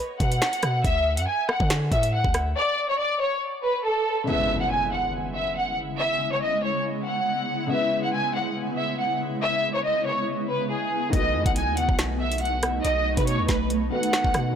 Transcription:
0.20 B2 F#5, kick, closed hi-hat
0.32 closed hi-hat
0.42 finger snap, snare
0.53 closed hi-hat
0.63 B2, cross-stick, closed hi-hat
0.84 D2 E5, kick, closed hi-hat
1.17 F#2 F#5, closed hi-hat
1.28 G#5
1.49 F#5, cross-stick
1.60 D3, kick
1.70 finger snap, snare, closed hi-hat
1.92 A2 E5, kick, closed hi-hat
2.03 closed hi-hat
2.13 F#5
2.24 D2, kick
2.34 cross-stick, closed hi-hat
2.56 D5
2.89 C#5
2.99 D5
3.20 C#5
3.63 B4
3.85 A4
4.24 C#3 G#3 B3 E4 E5, impact
4.29 E4 B4
4.60 F#5
4.70 G#5
4.92 F#5
5.35 E5
5.56 F#5
5.99 E5
6.32 C#5
6.42 D#5
6.63 C#5
7.06 F#5
7.67 C#3 G#3 B3 E5
7.72 E4 B4
8.03 F#5
8.13 G#5
8.35 F#5
8.78 E5
8.99 F#5
9.42 E5
9.75 C#5
9.85 D#5
10.06 C#5
10.49 B4
10.70 G#4
11.10 B1 D#3 A3 B3 D#4 D#5, kick, closed hi-hat
11.15 F#4 B4
11.35 F#2
11.46 B1 F#5, kick, closed hi-hat
11.56 G#5, closed hi-hat
11.67 D#2
11.77 F#5, closed hi-hat
11.89 B1, kick
11.99 finger snap, snare, closed hi-hat
12.20 E5
12.32 closed hi-hat
12.38 F#5, closed hi-hat
12.45 closed hi-hat
12.63 cross-stick, closed hi-hat
12.85 B1 D#5, closed hi-hat
13.17 B2 B4, kick, closed hi-hat
13.27 C#5, closed hi-hat
13.39 D#2
13.48 B1 B4, kick, snare, closed hi-hat
13.70 closed hi-hat
13.90 D#3 A3 B3 F#4 B4 F#5
14.03 closed hi-hat
14.13 finger snap, snare
14.24 B1, kick
14.34 B2, cross-stick, closed hi-hat

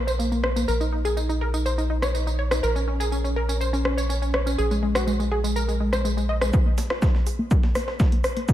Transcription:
Already playing: A#1
0.07 C5, tambourine
0.19 A#3, tambourine
0.32 A#3, tambourine
0.44 C5, cross-stick
0.56 A#3, tambourine
0.68 A#1 A#4, tambourine
0.80 D#4, tambourine
0.92 D#4
1.05 G#4, tambourine
1.17 D#4, tambourine
1.29 D#4, tambourine
1.41 A#4
1.54 D#4, tambourine
1.66 C5, tambourine
1.78 D#4, tambourine
1.90 D#4
2.02 C#5, cross-stick, tambourine
2.14 D#4, tambourine
2.27 D#4, tambourine
2.39 C#5
2.51 D#4, cross-stick, tambourine
2.63 A#1 A#4, tambourine
2.76 C#4, tambourine
2.88 C#4
3.00 G#4, tambourine
3.12 C#4, tambourine
3.24 C#4, tambourine
3.36 A#4
3.49 C#4, tambourine
3.61 C5, tambourine
3.73 C#4, tambourine
3.85 C#4, cross-stick
3.98 C#5, tambourine
4.09 C#4, tambourine
4.22 C#4, tambourine
4.34 C#5, cross-stick
4.46 C#4, tambourine
4.58 A#1 G#4, tambourine
4.71 G#3, tambourine
4.83 G#3
4.95 F#4, cross-stick, tambourine
5.07 G#3, tambourine
5.20 G#3, tambourine
5.31 G#4
5.44 G#3, tambourine
5.56 A#4, tambourine
5.68 G#3, tambourine
5.80 G#3
5.93 C5, cross-stick, tambourine
6.05 G#3, tambourine
6.17 G#3, tambourine
6.29 D#5
6.41 G#3, cross-stick, tambourine
6.53 G#4, kick, shaker
6.66 A#3
6.78 A#3, snare, open hi-hat, shaker
6.90 F4, cross-stick, snare
7.02 A#3, kick, snare, shaker
7.15 A#3, snare
7.26 G#4, open hi-hat, shaker
7.39 A#3
7.51 A#4, kick, shaker
7.63 A#3, snare
7.75 A#3, cross-stick, snare, open hi-hat, shaker
7.88 C5, snare
8.00 A#3, kick, snare, shaker
8.12 A#3, closed hi-hat
8.24 C5, cross-stick, open hi-hat, shaker
8.37 A#3, closed hi-hat
8.48 A#4, kick, shaker

